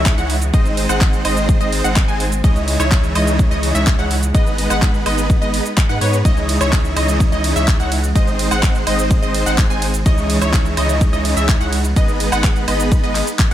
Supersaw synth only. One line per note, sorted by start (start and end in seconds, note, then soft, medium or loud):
0.00 0.14 G#3 medium
0.00 0.14 D#4 medium
0.00 0.14 E4 medium
0.00 0.14 C#5 medium
0.00 0.14 E5 medium
0.18 0.34 G#3 medium
0.18 0.34 D#4 medium
0.18 0.34 E4 medium
0.18 0.34 C#5 medium
0.18 0.34 F#5 loud
0.54 0.86 G#3 loud
0.54 0.86 C4 medium
0.54 0.86 D#4 medium
0.54 0.86 C5 medium
0.54 0.86 D#5 loud
0.89 1.22 G#3 medium
0.89 1.22 C4 medium
0.89 1.22 D#4 medium
0.89 1.22 C5 medium
0.89 1.22 F#5 loud
1.25 1.58 G#3 medium
1.25 1.58 C4 medium
1.25 1.58 D#4 medium
1.25 1.58 C5 medium
1.25 1.58 D#5 loud
1.61 1.82 G#3 medium
1.61 1.82 C4 medium
1.61 1.82 D#4 medium
1.61 1.82 C5 medium
1.61 1.82 D#5 loud
1.84 2.05 G#3 medium
1.84 2.05 C4 medium
1.84 2.05 D#4 medium
1.84 2.05 C5 medium
1.84 2.05 F#5 medium
2.08 2.25 G#3 medium
2.08 2.25 C4 medium
2.08 2.25 D#4 medium
2.08 2.25 C5 medium
2.08 2.25 G#5 loud
2.44 2.77 G#3 loud
2.44 2.77 D#4 medium
2.44 2.77 E4 medium
2.44 2.77 C#5 medium
2.44 2.77 D#5 loud
2.80 3.13 G#3 medium
2.80 3.13 D#4 medium
2.80 3.13 E4 medium
2.80 3.13 C#5 medium
2.80 3.13 E5 loud
3.15 3.48 G#3 medium
3.15 3.48 D#4 medium
3.15 3.48 E4 medium
3.15 3.48 C#5 medium
3.15 3.48 D#5 loud
3.51 3.72 G#3 medium
3.51 3.72 D#4 medium
3.51 3.72 E4 medium
3.51 3.72 C#5 medium
3.51 3.72 D#5 loud
3.75 3.95 G#3 medium
3.75 3.95 D#4 medium
3.75 3.95 E4 medium
3.75 3.95 C#5 medium
3.75 3.95 E5 medium
3.99 4.15 G#3 medium
3.99 4.15 D#4 medium
3.99 4.15 E4 medium
3.99 4.15 C#5 medium
3.99 4.15 F#5 loud
4.34 4.67 G#3 loud
4.34 4.67 B3 medium
4.34 4.67 D#4 medium
4.34 4.67 B4 medium
4.34 4.67 D#5 loud
4.70 5.03 G#3 medium
4.70 5.03 B3 medium
4.70 5.03 D#4 medium
4.70 5.03 B4 medium
4.70 5.03 F#5 loud
5.06 5.39 G#3 medium
5.06 5.39 B3 medium
5.06 5.39 D#4 medium
5.06 5.39 B4 medium
5.06 5.39 D#5 loud
5.42 5.63 G#3 medium
5.42 5.63 B3 medium
5.42 5.63 D#4 medium
5.42 5.63 B4 medium
5.42 5.63 D#5 loud
5.89 5.98 G#3 medium
5.89 5.98 B3 medium
5.89 5.98 D#4 medium
5.89 5.98 B4 medium
5.89 5.98 F#5 loud
6.01 6.18 G#3 medium
6.01 6.17 B3 medium
6.01 6.18 D#4 medium
6.01 6.18 B4 medium
6.01 6.18 C#5 loud
6.25 6.58 G#3 loud
6.25 6.58 D#4 medium
6.25 6.58 E4 medium
6.25 6.58 C#5 medium
6.25 6.58 D#5 loud
6.61 6.94 G#3 medium
6.61 6.94 D#4 medium
6.61 6.94 E4 medium
6.61 6.94 C#5 medium
6.61 6.94 E5 loud
6.96 7.29 G#3 medium
6.96 7.29 D#4 medium
6.96 7.29 E4 medium
6.96 7.29 C#5 medium
6.96 7.29 D#5 loud
7.32 7.53 G#3 medium
7.32 7.53 D#4 medium
7.32 7.53 E4 medium
7.32 7.53 C#5 medium
7.32 7.53 D#5 loud
7.56 7.76 G#3 medium
7.56 7.76 D#4 medium
7.56 7.76 E4 medium
7.56 7.76 C#5 medium
7.56 7.76 E5 medium
7.80 7.96 G#3 medium
7.80 7.96 D#4 medium
7.80 7.96 E4 medium
7.80 7.96 C#5 medium
7.80 7.96 F#5 loud
8.15 8.48 G#3 loud
8.15 8.48 C4 medium
8.15 8.48 D#4 medium
8.15 8.48 C5 medium
8.15 8.48 D#5 loud
8.51 8.84 G#3 medium
8.51 8.84 C4 medium
8.51 8.84 D#4 medium
8.51 8.84 C5 medium
8.51 8.84 F#5 loud
8.87 9.20 G#3 medium
8.87 9.20 C4 medium
8.87 9.20 D#4 medium
8.87 9.20 C5 medium
8.87 9.20 D#5 loud
9.23 9.44 G#3 medium
9.23 9.44 C4 medium
9.23 9.44 D#4 medium
9.23 9.44 C5 medium
9.23 9.44 D#5 loud
9.46 9.67 G#3 medium
9.46 9.67 C4 medium
9.46 9.67 D#4 medium
9.46 9.67 C5 medium
9.46 9.67 F#5 medium
9.70 9.86 G#3 medium
9.70 9.86 C4 medium
9.70 9.86 D#4 medium
9.70 9.86 C5 medium
9.70 9.86 G#5 medium
10.06 10.39 G#3 loud
10.06 10.39 D#4 medium
10.06 10.39 E4 medium
10.06 10.39 C#5 medium
10.06 10.39 D#5 loud
10.42 10.74 G#3 loud
10.42 10.74 D#4 medium
10.42 10.74 E4 medium
10.42 10.74 C#5 medium
10.42 10.74 E5 loud
10.77 11.10 G#3 medium
10.77 11.10 D#4 medium
10.77 11.10 E4 medium
10.77 11.10 C#5 medium
10.77 11.10 D#5 loud
11.13 11.34 G#3 medium
11.13 11.34 D#4 medium
11.13 11.34 E4 medium
11.13 11.34 C#5 medium
11.13 11.34 D#5 loud
11.37 11.57 G#3 medium
11.37 11.57 D#4 medium
11.37 11.57 E4 medium
11.37 11.57 C#5 medium
11.37 11.57 E5 medium
11.61 11.77 G#3 medium
11.61 11.77 D#4 medium
11.61 11.77 E4 medium
11.61 11.77 C#5 medium
11.61 11.77 F#5 loud
11.96 12.29 G#3 loud
11.96 12.29 B3 medium
11.96 12.29 D#4 medium
11.96 12.29 B4 medium
11.96 12.29 D#5 loud
12.32 12.65 G#3 medium
12.32 12.65 B3 medium
12.32 12.65 D#4 medium
12.32 12.65 B4 medium
12.32 12.65 F#5 loud
12.68 13.01 G#3 medium
12.68 13.01 B3 medium
12.68 13.01 D#4 medium
12.68 13.01 B4 medium
12.68 13.01 D#5 loud
13.03 13.24 G#3 medium
13.03 13.24 B3 medium
13.03 13.24 D#4 medium
13.03 13.24 B4 medium
13.03 13.24 D#5 loud